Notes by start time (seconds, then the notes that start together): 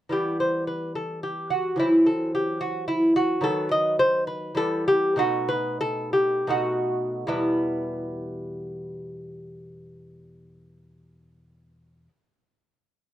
0.09 E3 G3 B3 G4
0.40 C5
0.67 B4
0.95 A4
1.23 G4
1.50 F#4
1.76 E3 F#3 C4 E4
2.06 A4
2.35 G4
2.61 F#4
2.88 E4
3.16 F#4
3.41 D#3 F#3 B3 A4
3.71 D#5
3.99 C5
4.27 B4
4.55 E3 G3 B3 A4
4.88 G4
5.16 B2 A3 D#4 F#4
5.49 B4
5.81 A4
6.13 G4
6.47 B2 A3 D#4 F#4
7.27 E2 B2 G3 B3 E4